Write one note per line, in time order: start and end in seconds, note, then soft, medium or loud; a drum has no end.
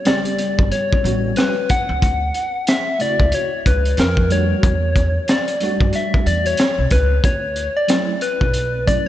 0.05 0.99 C#3 medium
0.05 0.98 G3 medium
0.05 0.99 B3 medium
0.05 1.00 G4 medium
0.05 0.71 D5 loud
0.05 snare loud
0.05 closed hi-hat medium
0.25 closed hi-hat medium
0.39 closed hi-hat medium
0.58 0.69 G1 medium
0.58 kick loud
0.72 1.39 C#5 medium
0.72 closed hi-hat medium
0.93 kick medium
1.03 1.31 A1 medium
1.03 1.52 G3 medium
1.03 1.52 B3 medium
1.03 1.53 C#4 medium
1.03 1.54 F#4 medium
1.03 closed hi-hat medium
1.36 1.72 B4 loud
1.36 snare medium
1.36 closed hi-hat medium
1.69 2.70 F#5 loud
1.69 kick medium
1.69 closed hi-hat medium
1.89 2.00 C#2 medium
2.02 2.29 D2 medium
2.02 kick loud
2.02 closed hi-hat medium
2.34 closed hi-hat medium
2.67 3.03 E5 loud
2.67 snare loud
2.67 closed hi-hat loud
2.99 3.48 C#3 medium
2.99 3.48 A3 medium
2.99 3.49 E4 medium
2.99 3.49 F#4 medium
2.99 3.36 D5 medium
2.99 closed hi-hat medium
3.19 3.30 C#2 medium
3.19 kick medium
3.32 3.66 C#5 loud
3.32 closed hi-hat medium
3.66 3.92 C#2 medium
3.66 4.01 B4 medium
3.66 kick medium
3.66 closed hi-hat medium
3.85 closed hi-hat medium
3.97 4.51 F2 medium
3.97 4.33 A#4 medium
3.97 snare loud
3.97 closed hi-hat medium
4.17 kick medium
4.29 4.70 G3 medium
4.29 4.71 A3 medium
4.29 4.71 D4 medium
4.29 4.72 F#4 medium
4.29 5.32 C#5 loud
4.29 closed hi-hat medium
4.63 5.16 E2 medium
4.63 kick loud
4.63 closed hi-hat medium
4.96 kick medium
4.96 closed hi-hat medium
5.28 5.95 D5 medium
5.28 snare loud
5.28 closed hi-hat loud
5.48 closed hi-hat medium
5.60 6.53 G3 medium
5.60 6.53 A3 medium
5.60 6.54 D4 medium
5.60 6.54 F#4 medium
5.60 closed hi-hat medium
5.80 5.91 F#2 medium
5.80 kick medium
5.93 6.25 E5 medium
5.93 closed hi-hat medium
6.14 kick medium
6.26 6.53 E2 medium
6.26 6.48 D5 loud
6.26 closed hi-hat medium
6.46 6.94 C#5 loud
6.46 closed hi-hat medium
6.57 snare loud
6.57 closed hi-hat medium
6.78 6.89 B1 medium
6.91 7.18 C#2 medium
6.91 7.26 B4 medium
6.91 kick medium
6.91 closed hi-hat medium
7.24 7.66 D2 medium
7.24 7.78 C#5 loud
7.24 kick loud
7.24 closed hi-hat medium
7.56 closed hi-hat medium
7.77 8.24 D5 loud
7.88 8.13 F#3 medium
7.88 8.13 A3 medium
7.88 8.14 C#4 medium
7.88 8.14 E4 medium
7.88 snare loud
7.88 closed hi-hat loud
8.21 8.89 B4 loud
8.21 closed hi-hat medium
8.41 8.94 B1 medium
8.41 kick medium
8.54 closed hi-hat medium
8.85 9.08 F#3 soft
8.85 9.08 A3 medium
8.85 9.08 C#4 soft
8.85 9.08 E4 medium
8.85 9.08 D5 loud
8.85 kick medium
8.85 closed hi-hat medium